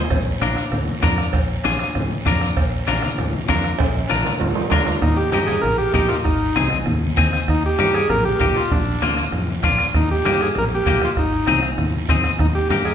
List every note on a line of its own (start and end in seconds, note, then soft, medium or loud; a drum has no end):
0.10 0.35 A#1 medium
0.10 bombo low medium
0.10 bombo rim medium
0.10 cowbell loud
0.10 high conga soft
0.10 low conga medium
0.10 long guiro medium
0.41 0.54 A#1 medium
0.41 0.63 D4 medium
0.41 0.64 F4 medium
0.41 0.64 A#4 medium
0.41 bombo rim medium
0.41 high conga medium
0.41 short guiro medium
0.57 bombo rim medium
0.57 short guiro medium
0.72 0.85 D2 medium
0.72 bombo rim medium
0.72 cowbell medium
0.72 high conga soft
0.72 low conga medium
0.72 long guiro medium
0.88 high conga medium
1.03 1.28 F2 medium
1.03 1.25 D4 medium
1.03 1.25 F4 medium
1.03 1.25 A#4 loud
1.03 bombo low medium
1.03 bombo rim medium
1.03 high conga medium
1.03 low conga medium
1.03 low timbale medium
1.03 short guiro medium
1.18 bombo rim medium
1.18 short guiro medium
1.33 1.58 A#1 medium
1.33 bombo low medium
1.33 bombo rim medium
1.33 cowbell loud
1.33 high conga soft
1.33 long guiro medium
1.64 1.77 A#1 loud
1.64 1.86 D4 medium
1.64 1.86 F4 medium
1.64 1.87 G#4 medium
1.64 bombo rim medium
1.64 high conga medium
1.64 short guiro medium
1.79 bombo rim medium
1.79 short guiro medium
1.95 2.08 D2 medium
1.95 bombo rim medium
1.95 cowbell medium
1.95 high conga soft
1.95 low conga medium
1.95 long guiro medium
2.12 high conga medium
2.26 2.51 F2 loud
2.26 2.48 D4 medium
2.26 2.48 F4 medium
2.26 2.48 A#4 medium
2.26 bombo low medium
2.26 bombo rim medium
2.26 high conga medium
2.26 low conga medium
2.26 short guiro medium
2.41 bombo rim medium
2.41 short guiro medium
2.57 2.81 A#1 loud
2.57 bombo low medium
2.57 bombo rim medium
2.57 cowbell loud
2.57 high conga soft
2.57 long guiro medium
2.87 3.00 A#1 medium
2.87 3.09 D4 medium
2.87 3.10 F4 medium
2.87 3.10 A#4 medium
2.87 bombo rim medium
2.87 high conga medium
2.87 short guiro medium
3.02 bombo rim medium
3.02 high conga medium
3.02 short guiro medium
3.18 3.31 D2 medium
3.18 bombo rim medium
3.18 cowbell medium
3.18 high conga soft
3.18 low conga medium
3.18 long guiro medium
3.34 high conga medium
3.48 3.74 F2 medium
3.48 3.70 D4 medium
3.48 3.71 F4 medium
3.48 3.71 A#4 loud
3.48 bombo low medium
3.48 bombo rim medium
3.48 high conga medium
3.48 low timbale medium
3.48 short guiro medium
3.64 bombo rim medium
3.64 short guiro medium
3.78 4.04 A#1 medium
3.78 bombo low medium
3.78 bombo rim medium
3.78 cowbell loud
3.78 high conga soft
3.78 low conga medium
3.78 high timbale loud
3.78 long guiro medium
4.10 4.23 A#1 medium
4.10 4.32 D4 medium
4.10 4.32 F4 medium
4.10 4.32 A#4 medium
4.10 bombo rim medium
4.10 high conga medium
4.10 short guiro medium
4.24 bombo rim medium
4.24 high conga medium
4.24 low timbale medium
4.24 short guiro medium
4.40 4.54 D2 medium
4.40 bombo rim medium
4.40 cowbell medium
4.40 high conga soft
4.40 low conga medium
4.40 low timbale medium
4.40 long guiro medium
4.55 high conga medium
4.55 low timbale loud
4.70 4.96 D2 medium
4.70 4.93 D4 medium
4.70 4.93 F4 medium
4.70 4.94 A#4 medium
4.70 bombo low medium
4.70 bombo rim medium
4.70 high conga medium
4.70 low timbale loud
4.70 short guiro medium
4.85 bombo rim medium
4.85 low timbale medium
4.85 short guiro medium
5.02 5.27 D#2 medium
5.02 5.18 D#4 medium
5.02 bombo low medium
5.02 bombo rim medium
5.02 high conga soft
5.02 low conga medium
5.02 long guiro medium
5.16 5.30 G4 medium
5.31 5.58 G2 medium
5.31 5.55 D#4 medium
5.31 5.39 G4 medium
5.31 5.55 G4 medium
5.31 5.55 A#4 medium
5.31 bombo rim medium
5.31 high conga medium
5.31 short guiro medium
5.46 5.62 G#4 medium
5.46 bombo rim medium
5.46 high conga medium
5.46 short guiro medium
5.61 5.88 A#1 medium
5.61 5.77 A#4 medium
5.61 bombo rim medium
5.61 high conga soft
5.61 low conga medium
5.61 long guiro medium
5.78 5.93 G4 medium
5.94 6.07 A#1 loud
5.94 6.16 D#4 medium
5.94 6.10 G4 medium
5.94 6.16 G4 medium
5.94 6.16 A#4 medium
5.94 bombo low medium
5.94 bombo rim medium
5.94 high conga medium
5.94 low conga medium
5.94 short guiro medium
6.08 6.16 F4 medium
6.08 bombo rim medium
6.08 short guiro medium
6.24 6.50 G#1 medium
6.24 6.68 D#4 medium
6.24 bombo low medium
6.24 bombo rim medium
6.24 high conga soft
6.24 long guiro medium
6.56 6.81 C2 medium
6.56 6.77 C4 medium
6.56 6.78 D#4 medium
6.56 6.78 G#4 medium
6.56 bombo rim medium
6.56 high conga medium
6.56 short guiro medium
6.70 bombo rim medium
6.70 high conga medium
6.70 short guiro medium
6.86 7.12 D#2 loud
6.86 bombo rim medium
6.86 high conga soft
6.86 low conga medium
6.86 long guiro medium
7.03 high conga medium
7.17 7.30 D#2 medium
7.17 7.39 C4 loud
7.17 7.39 D#4 medium
7.17 7.39 G#4 loud
7.17 bombo low medium
7.17 bombo rim medium
7.17 high conga medium
7.17 short guiro medium
7.33 bombo rim medium
7.33 short guiro medium
7.48 7.73 D#2 medium
7.48 7.63 D#4 medium
7.48 bombo low medium
7.48 bombo rim medium
7.48 high conga soft
7.48 long guiro medium
7.66 7.79 G4 medium
7.79 8.04 G2 medium
7.79 8.01 A#3 medium
7.79 8.01 D#4 medium
7.79 8.01 G4 medium
7.79 7.95 G4 medium
7.79 bombo rim medium
7.79 high conga medium
7.79 short guiro medium
7.94 8.09 G#4 loud
7.94 bombo rim medium
7.94 short guiro medium
8.10 8.34 A#1 loud
8.10 8.24 A#4 loud
8.10 bombo rim medium
8.10 high conga soft
8.10 low conga medium
8.10 long guiro medium
8.25 8.39 G4 medium
8.25 high conga medium
8.40 8.53 A#1 medium
8.40 8.62 A#3 medium
8.40 8.62 D#4 medium
8.40 8.56 G4 medium
8.40 8.62 G4 medium
8.40 bombo low medium
8.40 bombo rim medium
8.40 high conga medium
8.40 low conga medium
8.40 short guiro medium
8.56 8.72 F4 medium
8.56 bombo rim medium
8.56 short guiro medium
8.71 8.96 A#1 loud
8.71 9.14 D4 medium
8.71 bombo low medium
8.71 bombo rim medium
8.71 high conga soft
8.71 low conga medium
8.71 long guiro medium
9.02 9.27 D2 medium
9.02 9.24 A#3 medium
9.02 9.24 D4 medium
9.02 9.24 F4 medium
9.02 bombo rim medium
9.02 high conga medium
9.02 short guiro medium
9.17 bombo rim medium
9.17 short guiro medium
9.32 9.57 F2 medium
9.32 bombo rim medium
9.32 high conga soft
9.32 low conga medium
9.32 long guiro medium
9.48 high conga medium
9.63 9.76 A#1 medium
9.63 9.85 A#3 medium
9.63 9.85 D4 medium
9.63 9.85 F4 medium
9.63 bombo low medium
9.63 bombo rim medium
9.63 high conga medium
9.63 low conga medium
9.63 short guiro medium
9.78 bombo rim medium
9.78 short guiro medium
9.94 10.19 D#2 medium
9.94 10.09 D#4 medium
9.94 bombo low medium
9.94 bombo rim medium
9.94 high conga soft
9.94 low conga medium
9.94 long guiro medium
10.11 10.25 G4 medium
10.25 10.50 G2 medium
10.25 10.47 A#3 medium
10.25 10.47 D#4 medium
10.25 10.41 G4 medium
10.25 10.47 G4 medium
10.25 bombo rim medium
10.25 high conga medium
10.25 short guiro medium
10.40 10.49 G#4 medium
10.40 bombo rim medium
10.40 short guiro medium
10.55 10.80 A#1 loud
10.55 10.65 A#4 loud
10.55 bombo rim medium
10.55 high conga soft
10.55 low conga medium
10.55 long guiro medium
10.75 10.88 G4 medium
10.86 10.98 A#1 loud
10.86 11.08 A#3 medium
10.86 11.08 D#4 medium
10.86 11.08 G4 medium
10.86 11.04 G4 medium
10.86 bombo low medium
10.86 bombo rim medium
10.86 high conga medium
10.86 low conga medium
10.86 short guiro medium
11.02 11.11 F4 medium
11.02 bombo rim medium
11.02 short guiro medium
11.17 11.41 G#1 medium
11.17 11.61 D#4 medium
11.17 bombo low medium
11.17 bombo rim medium
11.17 high conga soft
11.17 long guiro medium
11.47 11.72 C2 medium
11.47 11.69 C4 medium
11.47 11.69 D#4 medium
11.47 11.69 G#4 medium
11.47 bombo rim medium
11.47 high conga medium
11.47 short guiro medium
11.63 bombo rim medium
11.63 short guiro medium
11.78 12.03 D#2 medium
11.78 bombo rim medium
11.78 high conga soft
11.78 low conga medium
11.78 long guiro medium
11.93 high conga medium
12.09 12.21 D#2 medium
12.09 12.31 C4 loud
12.09 12.31 D#4 medium
12.09 12.31 G#4 medium
12.09 bombo low medium
12.09 bombo rim medium
12.09 high conga medium
12.09 low conga medium
12.09 short guiro medium
12.24 bombo rim medium
12.24 short guiro medium
12.39 12.64 D#2 medium
12.39 12.47 D#4 medium
12.39 bombo low medium
12.39 bombo rim medium
12.39 high conga soft
12.39 low conga medium
12.39 long guiro medium
12.55 12.68 G4 medium
12.69 12.94 G2 medium
12.69 12.92 A#3 medium
12.69 12.92 D#4 medium
12.69 12.77 G4 medium
12.69 12.93 G4 medium
12.69 bombo rim medium
12.69 high conga medium
12.69 short guiro medium
12.85 12.92 G#4 medium
12.85 bombo rim medium
12.85 short guiro medium